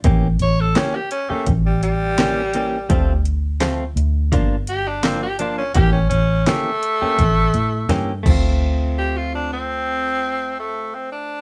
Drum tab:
CC |--------|--------|-------x|--------|
HH |xxxxxxxx|xxxxxxxx|xxxxxxx-|--------|
SD |--o---o-|--o---o-|--o---o-|--------|
BD |o---o---|o---o---|o---o--o|--------|